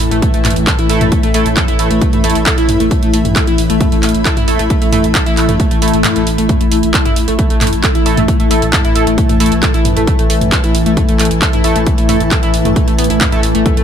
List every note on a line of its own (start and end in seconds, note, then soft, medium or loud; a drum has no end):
0.00 0.11 A1 loud
0.00 6.48 A2 medium
0.00 6.48 E3 medium
0.00 13.84 A3 medium
0.00 13.84 E4 medium
0.00 13.84 E5 medium
0.00 0.10 A5 medium
0.08 0.22 A1 medium
0.08 0.16 A3 medium
0.08 7.27 B5 medium
0.08 closed hi-hat soft
0.22 0.25 A3 medium
0.22 kick loud
0.22 closed hi-hat medium
0.34 0.44 A1 medium
0.34 0.38 A3 medium
0.34 closed hi-hat medium
0.45 0.56 A1 loud
0.45 0.49 A3 medium
0.45 clap medium
0.45 mid tom medium
0.45 open hi-hat loud
0.50 closed hi-hat medium
0.56 0.67 A1 medium
0.56 closed hi-hat medium
0.67 0.72 A4 loud
0.67 kick loud
0.67 clap loud
0.67 closed hi-hat medium
0.79 0.89 A1 medium
0.79 0.83 E4 loud
0.79 closed hi-hat medium
0.89 1.00 A1 loud
0.89 1.02 A3 medium
0.89 1.02 E4 medium
0.89 1.02 A4 loud
0.89 open hi-hat loud
1.01 1.12 A1 medium
1.01 1.05 A3 medium
1.01 closed hi-hat medium
1.01 mid tom medium
1.12 1.15 A3 medium
1.12 kick loud
1.12 closed hi-hat medium
1.23 1.34 A1 medium
1.23 1.28 A3 medium
1.23 closed hi-hat medium
1.34 1.45 A1 loud
1.34 1.39 A3 medium
1.34 1.47 A3 medium
1.34 1.47 E4 medium
1.34 1.47 A4 medium
1.34 open hi-hat loud
1.46 1.56 A1 medium
1.46 closed hi-hat medium
1.57 1.61 A4 loud
1.57 kick loud
1.57 clap loud
1.57 closed hi-hat medium
1.57 mid tom medium
1.68 1.78 A1 medium
1.68 1.72 E4 loud
1.68 closed hi-hat medium
1.79 1.90 A1 loud
1.79 1.87 A3 medium
1.79 1.87 E4 medium
1.79 1.87 A4 medium
1.79 open hi-hat medium
1.91 2.01 A1 medium
1.91 1.95 A3 medium
1.91 closed hi-hat medium
2.01 2.04 A3 medium
2.01 kick loud
2.01 closed hi-hat medium
2.13 2.23 A1 medium
2.13 2.17 A3 medium
2.13 closed hi-hat medium
2.13 mid tom medium
2.24 2.35 A1 loud
2.24 2.37 A3 medium
2.24 2.28 A3 medium
2.24 2.37 E4 medium
2.24 2.37 A4 medium
2.24 open hi-hat loud
2.30 closed hi-hat medium
2.35 2.46 A1 medium
2.35 closed hi-hat soft
2.46 2.51 A4 loud
2.46 kick loud
2.46 clap loud
2.46 closed hi-hat medium
2.58 2.68 A1 medium
2.58 2.62 E4 loud
2.58 closed hi-hat medium
2.69 2.79 A1 loud
2.69 mid tom medium
2.69 open hi-hat medium
2.80 2.91 A1 medium
2.80 2.84 A3 medium
2.80 closed hi-hat medium
2.91 2.94 A3 medium
2.91 kick loud
2.91 closed hi-hat medium
3.02 3.13 A1 medium
3.02 3.07 A3 medium
3.02 closed hi-hat medium
3.13 3.24 A1 medium
3.13 3.18 A3 medium
3.13 open hi-hat loud
3.25 3.36 A1 medium
3.25 closed hi-hat medium
3.25 mid tom medium
3.36 3.40 A4 loud
3.36 kick loud
3.36 clap loud
3.36 closed hi-hat medium
3.47 3.58 A1 medium
3.47 3.52 E4 loud
3.47 closed hi-hat medium
3.58 3.69 A1 loud
3.58 open hi-hat medium
3.70 3.80 A1 medium
3.70 3.74 A3 medium
3.70 closed hi-hat medium
3.81 3.83 A3 medium
3.81 kick loud
3.81 closed hi-hat medium
3.81 mid tom medium
3.92 4.02 A1 medium
3.92 3.96 A3 medium
3.92 closed hi-hat medium
4.03 4.14 A1 loud
4.03 4.07 A3 medium
4.03 clap medium
4.03 open hi-hat loud
4.09 closed hi-hat medium
4.14 4.25 A1 medium
4.14 closed hi-hat medium
4.25 4.30 A4 loud
4.25 kick loud
4.25 clap loud
4.25 closed hi-hat medium
4.37 4.47 A1 medium
4.37 4.41 E4 loud
4.37 closed hi-hat medium
4.37 mid tom medium
4.48 4.59 A1 loud
4.48 4.60 A3 medium
4.48 4.60 E4 medium
4.48 4.60 A4 loud
4.48 open hi-hat medium
4.59 4.70 A1 medium
4.59 4.63 A3 medium
4.59 closed hi-hat medium
4.70 4.73 A3 medium
4.70 kick loud
4.70 closed hi-hat medium
4.82 4.92 A1 medium
4.82 4.86 A3 medium
4.82 closed hi-hat medium
4.92 5.03 A1 loud
4.92 4.97 A3 medium
4.92 5.05 A3 medium
4.92 5.05 E4 medium
4.92 5.05 A4 medium
4.92 mid tom medium
4.92 open hi-hat loud
5.04 5.15 A1 medium
5.04 closed hi-hat medium
5.15 5.19 A4 loud
5.15 kick loud
5.15 clap loud
5.15 closed hi-hat medium
5.26 5.37 A1 medium
5.26 5.31 E4 loud
5.26 closed hi-hat medium
5.37 5.48 A1 loud
5.37 5.45 A3 medium
5.37 5.45 E4 medium
5.37 5.45 A4 medium
5.37 clap medium
5.37 open hi-hat medium
5.49 5.59 A1 medium
5.49 5.53 A3 medium
5.49 closed hi-hat medium
5.49 mid tom medium
5.60 5.62 A3 medium
5.60 kick loud
5.60 closed hi-hat medium
5.71 5.81 A1 medium
5.71 5.75 A3 medium
5.71 closed hi-hat medium
5.82 5.93 A1 loud
5.82 5.87 A3 medium
5.82 5.95 A3 medium
5.82 5.95 E4 medium
5.82 5.95 A4 medium
5.82 open hi-hat loud
5.88 closed hi-hat medium
5.94 6.04 A1 medium
5.94 5.98 A3 medium
5.94 closed hi-hat medium
6.04 6.09 A3 medium
6.04 clap loud
6.04 closed hi-hat medium
6.04 mid tom medium
6.16 6.26 A1 medium
6.16 6.20 A3 medium
6.16 closed hi-hat medium
6.27 6.38 A1 loud
6.27 open hi-hat medium
6.38 6.49 A1 medium
6.38 6.43 A3 medium
6.38 closed hi-hat medium
6.49 13.84 A2 medium
6.49 13.84 E3 medium
6.49 6.52 A3 medium
6.49 kick loud
6.49 closed hi-hat medium
6.49 mid tom medium
6.61 6.71 A1 medium
6.61 6.65 A3 medium
6.61 closed hi-hat medium
6.72 6.83 A1 medium
6.72 6.76 A3 medium
6.72 open hi-hat loud
6.83 6.94 A1 medium
6.83 closed hi-hat medium
6.94 6.98 A4 loud
6.94 kick loud
6.94 clap loud
6.94 closed hi-hat medium
7.05 7.16 A1 medium
7.05 7.10 E4 loud
7.05 closed hi-hat medium
7.05 mid tom medium
7.16 7.27 A1 loud
7.16 open hi-hat loud
7.24 7.39 A1 medium
7.24 7.32 A3 medium
7.24 13.84 A5 medium
7.24 closed hi-hat medium
7.39 7.41 A3 medium
7.39 kick loud
7.39 closed hi-hat medium
7.50 7.61 A1 medium
7.50 7.54 A3 medium
7.50 closed hi-hat medium
7.61 7.72 A1 loud
7.61 7.66 A3 medium
7.61 clap medium
7.61 mid tom medium
7.61 open hi-hat loud
7.67 closed hi-hat medium
7.73 7.83 A1 medium
7.73 closed hi-hat medium
7.84 7.88 A4 loud
7.84 kick loud
7.84 clap loud
7.84 closed hi-hat medium
7.95 8.05 A1 medium
7.95 7.99 E4 loud
7.95 closed hi-hat medium
8.06 8.17 A1 loud
8.06 8.19 A3 medium
8.06 8.19 E4 medium
8.06 8.19 A4 loud
8.06 open hi-hat medium
8.17 8.28 A1 medium
8.17 8.22 A3 medium
8.17 closed hi-hat medium
8.17 mid tom medium
8.28 8.31 A3 medium
8.28 kick loud
8.28 closed hi-hat medium
8.40 8.50 A1 medium
8.40 8.44 A3 medium
8.40 closed hi-hat medium
8.51 8.62 A1 loud
8.51 8.63 A3 medium
8.51 8.55 A3 medium
8.51 8.63 E4 medium
8.51 8.63 A4 medium
8.51 open hi-hat loud
8.62 8.73 A1 medium
8.62 closed hi-hat medium
8.73 8.78 A4 loud
8.73 kick loud
8.73 clap loud
8.73 closed hi-hat medium
8.73 mid tom medium
8.85 8.95 A1 medium
8.85 8.89 E4 loud
8.85 closed hi-hat medium
8.95 9.06 A1 loud
8.95 9.03 A3 medium
8.95 9.03 E4 medium
8.95 9.03 A4 medium
8.95 open hi-hat loud
9.07 9.18 A1 medium
9.07 9.11 A3 medium
9.07 closed hi-hat medium
9.18 9.21 A3 medium
9.18 kick loud
9.18 closed hi-hat medium
9.29 9.40 A1 medium
9.29 9.34 A3 medium
9.29 closed hi-hat medium
9.29 mid tom medium
9.40 9.51 A1 loud
9.40 9.45 A3 medium
9.40 9.53 A3 medium
9.40 9.53 E4 medium
9.40 9.53 A4 medium
9.40 open hi-hat loud
9.46 closed hi-hat medium
9.52 9.62 A1 medium
9.52 closed hi-hat medium
9.63 9.67 A4 loud
9.63 kick loud
9.63 clap loud
9.63 closed hi-hat medium
9.74 9.85 A1 medium
9.74 9.78 E4 loud
9.74 closed hi-hat medium
9.85 9.96 A1 loud
9.85 mid tom medium
9.85 open hi-hat loud
9.96 10.07 A1 medium
9.96 10.01 A3 medium
9.96 closed hi-hat medium
10.07 10.10 A3 medium
10.07 kick loud
10.07 closed hi-hat medium
10.19 10.29 A1 medium
10.19 10.23 A3 medium
10.19 closed hi-hat medium
10.30 10.41 A1 loud
10.30 10.34 A3 medium
10.30 open hi-hat loud
10.41 10.52 A1 medium
10.41 closed hi-hat medium
10.41 mid tom medium
10.52 10.57 A4 loud
10.52 kick loud
10.52 clap loud
10.52 closed hi-hat medium
10.64 10.74 A1 medium
10.64 10.68 E4 loud
10.64 closed hi-hat medium
10.75 10.86 A1 loud
10.75 open hi-hat loud
10.86 10.97 A1 medium
10.86 10.90 A3 medium
10.86 closed hi-hat medium
10.97 11.00 A3 medium
10.97 kick loud
10.97 closed hi-hat medium
10.97 mid tom medium
11.09 11.19 A1 medium
11.09 11.13 A3 medium
11.09 closed hi-hat medium
11.19 11.30 A1 loud
11.19 11.24 A3 medium
11.19 clap medium
11.19 open hi-hat loud
11.25 closed hi-hat medium
11.31 11.42 A1 medium
11.31 closed hi-hat medium
11.42 11.46 A4 loud
11.42 kick loud
11.42 clap loud
11.42 closed hi-hat medium
11.53 11.64 A1 medium
11.53 11.57 E4 loud
11.53 closed hi-hat medium
11.53 mid tom medium
11.64 11.75 A1 loud
11.64 11.77 A3 medium
11.64 11.77 E4 medium
11.64 11.77 A4 loud
11.64 open hi-hat loud
11.76 11.86 A1 medium
11.76 11.80 A3 medium
11.76 closed hi-hat medium
11.87 11.89 A3 medium
11.87 kick loud
11.87 closed hi-hat medium
11.98 12.08 A1 medium
11.98 12.02 A3 medium
11.98 closed hi-hat medium
12.09 12.20 A1 loud
12.09 12.13 A3 medium
12.09 12.22 A3 medium
12.09 12.22 E4 medium
12.09 12.22 A4 medium
12.09 mid tom medium
12.09 open hi-hat loud
12.20 12.31 A1 medium
12.20 closed hi-hat medium
12.31 12.36 A4 loud
12.31 kick loud
12.31 clap loud
12.31 closed hi-hat medium
12.43 12.53 A1 medium
12.43 12.47 E4 loud
12.43 closed hi-hat medium
12.54 12.65 A1 loud
12.54 open hi-hat loud
12.65 12.76 A1 medium
12.65 12.69 A3 medium
12.65 closed hi-hat medium
12.65 mid tom medium
12.76 12.79 A3 medium
12.76 kick loud
12.76 closed hi-hat medium
12.88 12.98 A1 medium
12.88 12.92 A3 medium
12.88 closed hi-hat medium
12.98 13.09 A1 loud
12.98 13.03 B3 medium
12.98 open hi-hat loud
13.04 closed hi-hat medium
13.10 13.21 A1 medium
13.10 13.12 E4 loud
13.10 closed hi-hat medium
13.21 13.25 E4 medium
13.21 kick loud
13.21 clap loud
13.21 closed hi-hat medium
13.21 mid tom medium
13.32 13.43 A1 medium
13.32 13.40 A3 medium
13.32 13.40 E4 medium
13.32 13.40 A4 loud
13.32 closed hi-hat medium
13.43 13.54 A1 loud
13.43 open hi-hat loud
13.55 13.65 A1 medium
13.55 13.59 A3 loud
13.55 closed hi-hat medium
13.66 13.68 A3 medium
13.66 kick loud
13.66 closed hi-hat medium
13.66 mid tom medium
13.77 13.84 A1 medium
13.77 13.81 A3 medium
13.77 closed hi-hat medium